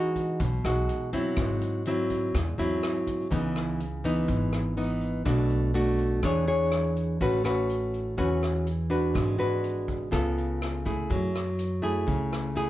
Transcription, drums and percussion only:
0.16 kick soft
0.16 closed hi-hat soft
0.40 kick medium
0.40 closed hi-hat medium
0.64 cross-stick medium
0.64 closed hi-hat soft
0.89 closed hi-hat soft
1.13 kick soft
1.13 closed hi-hat soft
1.37 kick medium
1.37 cross-stick medium
1.37 closed hi-hat soft
1.61 closed hi-hat soft
1.85 closed hi-hat soft
2.10 kick soft
2.10 closed hi-hat soft
2.35 kick medium
2.35 cross-stick medium
2.35 closed hi-hat medium
2.59 closed hi-hat soft
2.83 cross-stick medium
2.83 closed hi-hat soft
3.07 kick soft
3.07 closed hi-hat soft
3.32 kick medium
3.32 closed hi-hat soft
3.56 cross-stick soft
3.56 closed hi-hat soft
3.80 closed hi-hat soft
4.04 closed hi-hat soft
4.28 kick medium
4.28 closed hi-hat soft
4.53 cross-stick soft
4.53 closed hi-hat soft
4.77 closed hi-hat soft
5.01 closed hi-hat soft
5.26 kick medium
5.26 cross-stick soft
5.26 closed hi-hat soft
5.50 closed hi-hat soft
5.74 closed hi-hat soft
5.99 closed hi-hat soft
6.23 kick medium
6.23 cross-stick medium
6.23 closed hi-hat soft
6.47 closed hi-hat soft
6.72 cross-stick medium
6.72 closed hi-hat soft
6.97 closed hi-hat soft
7.21 kick medium
7.21 closed hi-hat soft
7.45 cross-stick soft
7.45 closed hi-hat soft
7.70 closed hi-hat soft
7.94 closed hi-hat soft
8.18 kick medium
8.18 closed hi-hat soft
8.43 cross-stick soft
8.43 closed hi-hat soft
8.67 closed hi-hat soft
8.91 closed hi-hat soft
9.15 kick medium
9.15 cross-stick medium
9.15 closed hi-hat soft
9.40 closed hi-hat soft
9.64 closed hi-hat soft
9.88 kick soft
9.88 closed hi-hat soft
10.13 kick medium
10.13 cross-stick medium
10.13 closed hi-hat soft
10.38 closed hi-hat soft
10.62 cross-stick medium
10.62 closed hi-hat soft
10.86 kick medium
10.86 closed hi-hat soft
11.10 kick medium
11.10 closed hi-hat soft
11.35 cross-stick soft
11.35 closed hi-hat soft
11.59 closed hi-hat soft
11.83 closed hi-hat soft
12.08 kick medium
12.08 closed hi-hat soft
12.33 cross-stick medium
12.33 closed hi-hat soft
12.56 closed hi-hat soft

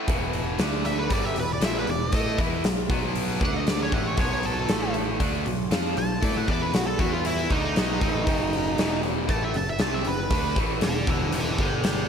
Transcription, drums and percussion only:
0.08 kick loud
0.08 open hi-hat medium
0.33 open hi-hat soft
0.59 snare loud
0.59 open hi-hat medium
0.85 open hi-hat soft
1.10 kick medium
1.10 open hi-hat medium
1.36 open hi-hat soft
1.61 snare loud
1.61 open hi-hat medium
1.87 open hi-hat medium
2.12 kick loud
2.12 open hi-hat medium
2.38 kick medium
2.38 open hi-hat soft
2.64 snare loud
2.64 open hi-hat medium
2.90 kick loud
2.90 open hi-hat medium
3.15 open hi-hat medium
3.41 kick medium
3.41 open hi-hat soft
3.67 snare loud
3.67 open hi-hat medium
3.92 kick loud
3.92 open hi-hat soft
4.17 kick loud
4.17 open hi-hat medium
4.43 open hi-hat soft
4.69 snare loud
4.69 open hi-hat medium
4.94 open hi-hat soft
5.20 kick loud
5.20 open hi-hat medium
5.46 open hi-hat soft
5.71 snare loud
5.71 open hi-hat medium
5.97 open hi-hat medium
6.23 kick loud
6.23 open hi-hat medium
6.48 kick medium
6.48 open hi-hat soft
6.74 snare loud
6.74 open hi-hat medium
6.99 kick loud
6.99 open hi-hat medium
7.25 open hi-hat medium
7.50 kick medium
7.50 open hi-hat soft
7.76 snare loud
7.76 open hi-hat medium
8.01 kick loud
8.01 open hi-hat medium
8.27 kick loud
8.27 open hi-hat medium
8.53 open hi-hat soft
8.78 snare loud
8.78 open hi-hat medium
9.03 open hi-hat soft
9.29 kick loud
9.29 open hi-hat medium
9.54 open hi-hat soft
9.79 snare loud
9.79 open hi-hat medium
10.05 open hi-hat soft
10.30 kick loud
10.30 open hi-hat medium
10.56 kick loud
10.56 open hi-hat soft
10.81 snare loud
10.81 open hi-hat medium
11.07 kick loud
11.07 open hi-hat soft
11.32 open hi-hat medium
11.58 kick medium
11.58 open hi-hat soft
11.84 snare loud
11.84 open hi-hat medium

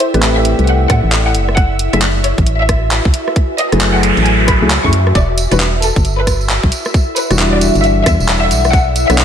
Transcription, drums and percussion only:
0.00 open hi-hat loud
0.14 cross-stick medium
0.14 closed hi-hat medium
0.23 clap loud
0.23 closed hi-hat medium
0.45 open hi-hat medium
0.59 closed hi-hat soft
0.67 closed hi-hat medium
0.90 kick loud
0.90 cross-stick medium
0.90 open hi-hat loud
1.12 clap loud
1.12 closed hi-hat medium
1.35 open hi-hat medium
1.49 cross-stick medium
1.57 kick loud
1.57 closed hi-hat medium
1.79 open hi-hat loud
1.93 cross-stick medium
1.93 closed hi-hat medium
2.02 clap loud
2.02 closed hi-hat medium
2.24 open hi-hat loud
2.38 kick loud
2.38 closed hi-hat soft
2.47 closed hi-hat medium
2.69 kick medium
2.69 cross-stick medium
2.69 open hi-hat loud
2.91 clap loud
2.91 closed hi-hat medium
3.05 kick loud
3.14 open hi-hat medium
3.28 cross-stick medium
3.36 kick loud
3.36 closed hi-hat medium
3.58 open hi-hat loud
3.72 cross-stick medium
3.72 closed hi-hat medium
3.81 clap loud
3.81 closed hi-hat medium
4.03 open hi-hat loud
4.17 closed hi-hat soft
4.26 closed hi-hat medium
4.48 kick loud
4.48 cross-stick medium
4.48 open hi-hat loud
4.70 clap loud
4.70 closed hi-hat medium
4.84 kick medium
4.93 open hi-hat loud
5.07 cross-stick medium
5.15 kick loud
5.15 closed hi-hat medium
5.15 tambourine soft
5.38 open hi-hat loud
5.38 tambourine loud
5.51 cross-stick medium
5.51 closed hi-hat medium
5.51 tambourine medium
5.60 clap loud
5.60 closed hi-hat medium
5.82 open hi-hat loud
5.82 tambourine loud
5.96 kick loud
5.96 closed hi-hat soft
5.96 tambourine medium
6.05 closed hi-hat medium
6.05 tambourine soft
6.27 kick medium
6.27 cross-stick medium
6.27 open hi-hat loud
6.27 tambourine medium
6.41 tambourine soft
6.50 clap loud
6.50 closed hi-hat medium
6.50 tambourine soft
6.63 kick loud
6.72 open hi-hat medium
6.72 tambourine medium
6.85 cross-stick medium
6.85 tambourine medium
6.94 kick loud
6.94 closed hi-hat medium
6.94 tambourine soft
7.16 open hi-hat loud
7.16 tambourine loud
7.31 cross-stick medium
7.31 closed hi-hat medium
7.31 tambourine medium
7.39 clap loud
7.39 closed hi-hat medium
7.39 tambourine soft
7.61 open hi-hat medium
7.61 tambourine loud
7.75 closed hi-hat soft
7.75 tambourine medium
7.84 closed hi-hat medium
7.84 tambourine soft
8.06 kick loud
8.06 cross-stick medium
8.06 open hi-hat loud
8.06 tambourine medium
8.20 tambourine medium
8.29 clap loud
8.29 closed hi-hat medium
8.29 tambourine soft
8.51 open hi-hat medium
8.51 tambourine loud
8.64 cross-stick medium
8.64 tambourine medium
8.73 kick loud
8.73 closed hi-hat medium
8.73 tambourine soft
8.96 open hi-hat loud
8.96 tambourine medium
9.10 cross-stick medium
9.10 closed hi-hat medium
9.10 tambourine medium
9.18 clap loud
9.18 closed hi-hat medium
9.18 tambourine soft

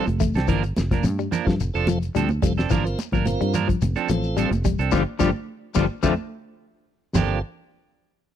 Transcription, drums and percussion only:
0.07 closed hi-hat soft
0.07 high conga medium
0.07 shekere soft
0.20 kick medium
0.20 closed hi-hat medium
0.20 high conga medium
0.20 low conga medium
0.20 shekere medium
0.34 snare medium
0.34 closed hi-hat soft
0.34 shekere soft
0.48 kick medium
0.48 closed hi-hat medium
0.48 shekere medium
0.63 closed hi-hat soft
0.63 shekere soft
0.77 snare medium
0.77 closed hi-hat soft
0.77 high conga medium
0.77 shekere medium
0.91 kick medium
0.91 snare soft
0.91 closed hi-hat soft
0.91 high conga medium
0.91 shekere soft
1.03 closed hi-hat medium
1.03 high conga medium
1.03 shekere medium
1.19 shekere soft
1.32 closed hi-hat soft
1.32 low conga medium
1.32 shekere medium
1.47 kick medium
1.47 snare medium
1.47 shekere soft
1.60 closed hi-hat medium
1.60 shekere medium
1.75 shekere soft
1.87 closed hi-hat medium
1.87 high conga loud
1.87 low conga medium
1.87 shekere medium
2.02 closed hi-hat soft
2.02 shekere soft
2.15 closed hi-hat medium
2.15 shekere medium
2.29 high conga medium
2.29 shekere soft
2.42 kick medium
2.42 closed hi-hat medium
2.42 high conga medium
2.42 low conga medium
2.42 shekere medium
2.58 snare medium
2.58 shekere soft
2.70 kick medium
2.70 closed hi-hat medium
2.70 low conga medium
2.70 shekere medium
2.86 closed hi-hat soft
2.86 shekere soft
2.99 closed hi-hat soft
2.99 high conga medium
2.99 shekere medium
3.12 kick medium
3.12 high conga medium
3.12 shekere soft
3.26 closed hi-hat medium
3.26 high conga medium
3.26 shekere medium
3.41 closed hi-hat soft
3.41 shekere soft
3.54 closed hi-hat medium
3.54 low conga medium
3.54 shekere medium
3.69 kick medium
3.69 closed hi-hat soft
3.69 shekere soft
3.81 closed hi-hat medium
3.81 high conga medium
3.81 shekere medium
3.96 closed hi-hat soft
3.96 shekere soft
4.09 closed hi-hat medium
4.09 high conga medium
4.09 shekere medium
4.23 shekere soft
4.37 closed hi-hat medium
4.37 shekere medium
4.52 closed hi-hat soft
4.52 high conga medium
4.52 shekere soft
4.65 kick medium
4.65 closed hi-hat medium
4.65 low conga medium
4.65 shekere medium
4.79 closed hi-hat soft
4.79 shekere soft
4.91 kick medium
4.91 snare medium
4.91 high conga loud
4.91 shekere loud
5.20 kick medium
5.20 snare medium
5.20 high conga loud
5.20 shekere medium
5.75 kick medium
5.75 snare medium
5.75 high conga medium
5.75 shekere loud
6.03 kick medium
6.03 snare medium
6.03 high conga loud
6.03 shekere loud
7.15 snare medium
7.15 floor tom medium
7.15 crash medium
7.15 low conga loud
7.15 shekere loud

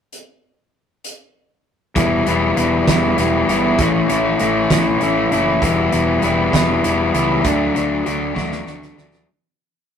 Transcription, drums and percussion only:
0.13 closed hi-hat soft
1.04 closed hi-hat medium
1.96 kick medium
1.96 closed hi-hat medium
2.26 closed hi-hat medium
2.57 closed hi-hat medium
2.87 kick medium
2.87 snare loud
2.87 closed hi-hat medium
3.18 closed hi-hat medium
3.49 closed hi-hat medium
3.78 kick loud
3.78 closed hi-hat medium
4.09 closed hi-hat medium
4.39 closed hi-hat medium
4.70 kick medium
4.70 snare loud
4.70 closed hi-hat medium
5.01 closed hi-hat medium
5.32 closed hi-hat medium
5.62 kick medium
5.62 closed hi-hat medium
5.92 closed hi-hat medium
6.22 closed hi-hat medium
6.53 kick medium
6.53 snare loud
6.53 closed hi-hat medium
6.84 closed hi-hat medium
7.14 closed hi-hat medium
7.44 kick medium
7.44 closed hi-hat medium
7.76 closed hi-hat medium
8.06 closed hi-hat medium
8.36 kick medium
8.36 snare medium
8.52 snare soft
8.67 snare medium
8.82 snare medium
8.98 snare medium
9.13 snare medium

